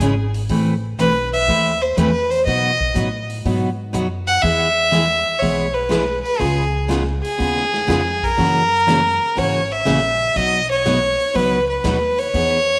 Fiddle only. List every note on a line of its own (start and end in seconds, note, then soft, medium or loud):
0.00 0.30 G#4 medium
0.99 1.30 B4 loud
1.33 1.83 E5 loud
1.82 1.98 C5 medium
1.96 2.32 B4 loud
2.30 2.45 C5 loud
2.46 3.25 D#5 loud
4.28 4.44 F#5 loud
4.42 5.41 E5 loud
5.39 5.75 C#5 loud
5.74 6.22 B4 medium
6.23 6.41 B4 medium
6.39 6.89 G#4 medium
7.23 8.25 G#4 loud
8.24 9.40 A#4 loud
9.38 9.73 C#5 loud
9.72 10.38 E5 loud
10.37 10.70 D#5 loud
10.71 11.37 C#5 loud
11.35 11.68 B4 loud
11.69 12.20 B4 medium
12.19 12.79 C#5 loud